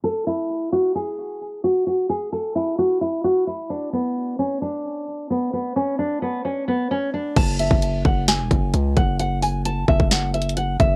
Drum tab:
CC |------------------------------------------------|------------------------------------------------|------------------------------------------------|------------------------------------------------|
HH |------------------------------------------------|------------------------------------------------|------------------------------------------------|------------------------------------------------|
SD |------------------------------------------------|------------------------------------------------|------------------------------------------------|------------------------------------------------|
BD |------------------------------------------------|------------------------------------------------|------------------------------------------------|------------------------------------------------|

CC |x-----------------------------------------------|------------------------------------------------|
HH |x-----x-----x-----------x-----x-----x-----x-----|x-----o-----x-----------x-----x-x-x-x-----x-----|
SD |------------------------o-----------------------|------------------------o-----------------------|
BD |o--------o--------o-----------o-----------o-----|------------------o--o--------------------o-----|